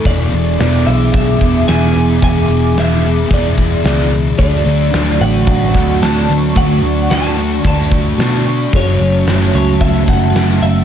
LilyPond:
<<
  \new Staff \with { instrumentName = "Analog synth pad" } { \time 4/4 \key e \mixolydian \tempo 4 = 111 <gis' e'' d'''>1~ | <gis' e'' d'''>1 | <fis' d'' cis'''>1~ | <fis' d'' cis'''>1 |
<fis' e'' a''>1 | }
  \new Staff \with { instrumentName = "Clean electric guitar" } { \time 4/4 \key e \mixolydian d''4. e''8 e''4 gis''4 | gis''4 e''4 d''4. r8 | d''4. fis''8 fis''4 a''4 | fis''4 a''4 a''4. r8 |
cis''4. cis''8 e''8 fis''4 e''8 | }
  \new Staff \with { instrumentName = "Overdriven electric guitar" } { \time 4/4 \key e \mixolydian <e b d' gis'>1~ | <e b d' gis'>1 | <d fis a d' fis'>1~ | <d fis a d' fis'>1 |
<fis a cis' fis'>1 | }
  \new Staff \with { instrumentName = "Distorted electric guitar" } { \clef bass \time 4/4 \key e \mixolydian <e, b, e>8 <b, e>8 <e, b, e>8 <b, e>8 <e, b, e>8 <b, e>8 <e, b, e>8 <b, e>8 | <e, b, e>8 <b, e>8 <e, b, e>8 <b, e>8 <e, b, e>8 <b, e>8 <e, b, e>8 <b, e>8 | <d a d'>8 <a d'>8 <d a d'>8 <a d'>8 <d a d'>8 <a d'>8 <d a d'>8 <a d'>8 | <d a d'>8 <a d'>8 <d a d'>8 <a d'>8 <d a d'>8 <a d'>8 <d a d'>8 <a d'>8 |
<fis, cis fis>8 <cis fis>8 <fis, cis fis>8 <cis fis>8 <fis, cis fis>8 <cis fis>8 <fis, cis fis>8 <cis fis>8 | }
  \new Staff \with { instrumentName = "Picked electric bass" } { \clef bass \time 4/4 \key e \mixolydian e,,8 e,,8 e,,8 b,,8 b,,8 e,,8 e,,8 e,,8 | e,,8 e,,8 e,,4 e,,4 cis,4 | d,8 d,8 d,8 a,,8 a,,8 d,8 d,8 d,8 | d,8 d,8 d,4 d,4 b,4 |
fis,,8 fis,,8 fis,,8 cis,8 cis,8 fis,,8 fis,,8 fis,,8 | }
  \new DrumStaff \with { instrumentName = "Drums" } \drummode { \time 4/4 <hho bd>4 <hho sn>4 <hho bd>8 bd8 <hho sn>4 | <hho bd>4 <hho sn>4 <hho bd>8 bd8 <hho sn>4 | <hho bd>4 <hho sn>4 <hho bd>8 bd8 <hho sn>4 | <hho bd>4 <hho sn>4 <hho bd>8 bd8 <hho sn>4 |
<hho bd>4 <hho sn>4 <hho bd>8 bd8 <hho sn>4 | }
>>